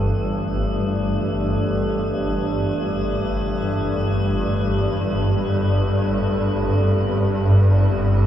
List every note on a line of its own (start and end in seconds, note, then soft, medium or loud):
0.00 8.27 G1 medium
0.00 8.27 G2 medium
0.00 5.28 E3 medium
0.00 5.28 A3 medium
0.00 8.27 A3 medium
0.00 8.27 D4 medium
0.00 7.36 G4 medium
0.00 8.27 A4 medium
0.00 5.28 B4 medium
5.27 8.27 G3 medium
6.33 8.27 C4 medium
7.37 8.27 G4 medium
8.23 8.27 F4 medium